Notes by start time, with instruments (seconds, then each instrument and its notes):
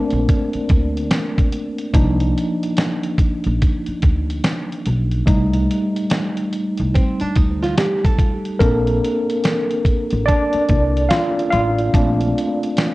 Already playing: tine electric piano A3 A#3 C4 D4 A#4
0.10 upright bass A#1, closed hi-hat
0.29 kick, closed hi-hat
0.53 muted upright bass stroke, closed hi-hat
0.69 upright bass D2, kick, closed hi-hat
0.97 closed hi-hat
1.11 snare, closed hi-hat
1.38 kick, closed hi-hat
1.52 closed hi-hat
1.78 closed hi-hat
1.93 upright bass C2, tine electric piano F3 A#3 D4 D#4, kick, closed hi-hat
2.20 closed hi-hat
2.38 closed hi-hat
2.63 closed hi-hat
2.77 snare, closed hi-hat
3.04 closed hi-hat
3.18 kick, closed hi-hat
3.44 upright bass A#1, closed hi-hat
3.62 kick, closed hi-hat
3.86 muted upright bass stroke, closed hi-hat
4.02 upright bass D2, kick, closed hi-hat
4.30 closed hi-hat
4.44 snare, closed hi-hat
4.72 closed hi-hat
4.86 upright bass B1, closed hi-hat
5.11 closed hi-hat
5.26 upright bass C2, tine electric piano G3 A3 D#4, kick, closed hi-hat
5.53 closed hi-hat
5.71 closed hi-hat
5.96 closed hi-hat
6.10 snare, closed hi-hat
6.37 closed hi-hat
6.53 closed hi-hat
6.77 upright bass C2, closed hi-hat
6.94 nylon-string guitar C4, kick, closed hi-hat
7.20 nylon-string guitar D4, muted upright bass stroke, closed hi-hat
7.36 upright bass D2, nylon-string guitar D#4, kick, closed hi-hat
7.62 nylon-string guitar F4, snare, closed hi-hat
7.78 nylon-string guitar G4, snare, closed hi-hat
8.05 nylon-string guitar A4, kick, closed hi-hat
8.19 kick, closed hi-hat
8.45 closed hi-hat
8.59 upright bass A#1, tine electric piano A#3 C4 D4 A4 A#4, kick, closed hi-hat
8.87 closed hi-hat
9.05 closed hi-hat
9.30 closed hi-hat
9.44 snare, closed hi-hat
9.71 closed hi-hat
9.85 kick, closed hi-hat
10.11 upright bass A1, closed hi-hat
10.26 tine electric piano D4 D5, kick, closed hi-hat
10.53 muted upright bass stroke, closed hi-hat
10.69 upright bass C2, kick, closed hi-hat
10.97 closed hi-hat
11.09 tine electric piano F4 F5, snare, closed hi-hat
11.39 closed hi-hat
11.50 upright bass A1, tine electric piano F4 F5, closed hi-hat
11.78 closed hi-hat
11.93 upright bass A#1, tine electric piano A3 C4 D4, kick, closed hi-hat
12.20 closed hi-hat
12.38 closed hi-hat
12.63 closed hi-hat
12.77 snare, closed hi-hat